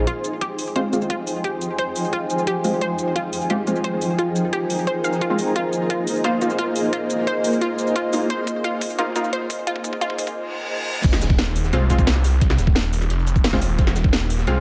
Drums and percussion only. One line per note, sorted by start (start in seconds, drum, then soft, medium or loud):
0.07 kick loud
0.07 closed hi-hat medium
0.24 closed hi-hat medium
0.24 cabasa medium
0.41 kick loud
0.41 closed hi-hat medium
0.59 open hi-hat medium
0.59 cabasa medium
0.67 cabasa soft
0.76 kick loud
0.76 closed hi-hat medium
0.93 closed hi-hat medium
0.93 cabasa medium
1.01 cabasa soft
1.10 kick loud
1.10 closed hi-hat medium
1.27 open hi-hat medium
1.27 cabasa medium
1.44 kick medium
1.44 closed hi-hat medium
1.61 closed hi-hat medium
1.61 cabasa medium
1.78 kick loud
1.78 closed hi-hat medium
1.96 open hi-hat medium
1.96 cabasa medium
2.04 cabasa soft
2.13 kick medium
2.13 closed hi-hat medium
2.30 closed hi-hat medium
2.30 cabasa medium
2.38 cabasa soft
2.47 kick loud
2.47 closed hi-hat medium
2.64 open hi-hat medium
2.64 cabasa medium
2.81 kick medium
2.81 closed hi-hat medium
2.99 closed hi-hat medium
2.99 cabasa medium
3.16 kick loud
3.16 closed hi-hat medium
3.33 open hi-hat medium
3.33 cabasa medium
3.41 cabasa soft
3.50 kick medium
3.50 closed hi-hat medium
3.67 closed hi-hat medium
3.67 cabasa medium
3.76 cabasa soft
3.84 kick loud
3.84 closed hi-hat medium
4.01 open hi-hat medium
4.01 cabasa medium
4.19 kick loud
4.19 closed hi-hat medium
4.36 closed hi-hat medium
4.36 cabasa medium
4.53 kick loud
4.53 closed hi-hat medium
4.70 open hi-hat medium
4.70 cabasa medium
4.79 cabasa soft
4.87 kick loud
4.87 closed hi-hat medium
5.04 closed hi-hat medium
5.04 cabasa medium
5.13 cabasa soft
5.21 kick loud
5.21 closed hi-hat medium
5.39 open hi-hat medium
5.39 cabasa medium
5.56 kick loud
5.56 closed hi-hat medium
5.73 closed hi-hat medium
5.73 cabasa medium
5.90 kick loud
5.90 closed hi-hat medium
6.07 open hi-hat medium
6.07 cabasa medium
6.16 cabasa soft
6.24 kick loud
6.24 closed hi-hat medium
6.41 closed hi-hat medium
6.41 cabasa medium
6.50 cabasa soft
6.59 kick loud
6.59 closed hi-hat medium
6.76 open hi-hat medium
6.76 cabasa medium
6.93 kick loud
6.93 closed hi-hat medium
7.10 closed hi-hat medium
7.10 cabasa medium
7.27 kick loud
7.27 closed hi-hat medium
7.44 open hi-hat medium
7.44 cabasa medium
7.53 cabasa soft
7.61 kick loud
7.61 closed hi-hat medium
7.79 closed hi-hat medium
7.79 cabasa medium
7.87 cabasa soft
7.96 kick loud
7.96 closed hi-hat medium
8.13 open hi-hat medium
8.13 cabasa medium
8.30 kick loud
8.30 closed hi-hat loud
8.47 kick loud
8.47 closed hi-hat medium
8.47 cabasa medium
8.64 kick loud
8.64 closed hi-hat medium
8.81 kick loud
8.81 open hi-hat medium
8.81 cabasa medium
8.90 cabasa soft
8.99 kick loud
8.99 closed hi-hat medium
9.16 kick loud
9.16 closed hi-hat medium
9.16 cabasa medium
9.24 cabasa soft
9.33 kick loud
9.33 closed hi-hat loud
9.50 kick loud
9.50 open hi-hat medium
9.50 cabasa medium
9.67 kick loud
9.67 closed hi-hat loud
9.76 kick medium
9.84 kick loud
9.84 closed hi-hat medium
9.84 cabasa medium
9.93 kick medium
10.01 kick loud
10.01 closed hi-hat medium
10.01 cabasa soft
10.10 kick medium
10.19 kick loud
10.19 open hi-hat medium
10.19 cabasa medium
10.27 kick medium
10.27 cabasa soft
11.04 kick loud
11.04 closed hi-hat loud
11.04 closed hi-hat medium
11.04 crash loud
11.12 snare soft
11.12 snare medium
11.21 snare medium
11.21 closed hi-hat medium
11.21 cabasa medium
11.30 kick loud
11.38 snare loud
11.38 closed hi-hat medium
11.47 snare medium
11.56 closed hi-hat medium
11.56 open hi-hat medium
11.56 cabasa medium
11.64 snare soft
11.64 cabasa soft
11.73 closed hi-hat loud
11.90 kick medium
11.90 closed hi-hat medium
11.90 cabasa medium
11.99 kick loud
11.99 cabasa soft
12.07 snare loud
12.07 closed hi-hat loud
12.07 closed hi-hat medium
12.16 snare soft
12.24 snare medium
12.24 closed hi-hat medium
12.24 open hi-hat medium
12.24 cabasa medium
12.41 kick loud
12.41 closed hi-hat medium
12.50 snare soft
12.50 snare medium
12.58 snare soft
12.58 closed hi-hat medium
12.58 cabasa medium
12.67 kick loud
12.75 snare loud
12.75 closed hi-hat medium
12.85 closed hi-hat soft
12.93 closed hi-hat medium
12.93 open hi-hat medium
12.93 cabasa medium
13.01 snare soft
13.01 cabasa soft
13.10 closed hi-hat medium
13.19 closed hi-hat soft
13.26 closed hi-hat medium
13.26 cabasa medium
13.36 kick loud
13.36 cabasa soft
13.44 snare loud
13.44 closed hi-hat medium
13.44 closed hi-hat loud
13.53 kick medium
13.53 snare soft
13.61 snare soft
13.61 closed hi-hat medium
13.61 open hi-hat medium
13.61 cabasa medium
13.79 kick loud
13.79 closed hi-hat loud
13.79 closed hi-hat medium
13.87 snare soft
13.87 snare medium
13.96 snare medium
13.96 closed hi-hat medium
13.96 cabasa medium
14.04 kick loud
14.13 snare loud
14.13 closed hi-hat medium
14.21 snare medium
14.30 closed hi-hat medium
14.30 open hi-hat medium
14.30 cabasa medium
14.39 snare soft
14.39 cabasa soft
14.47 closed hi-hat medium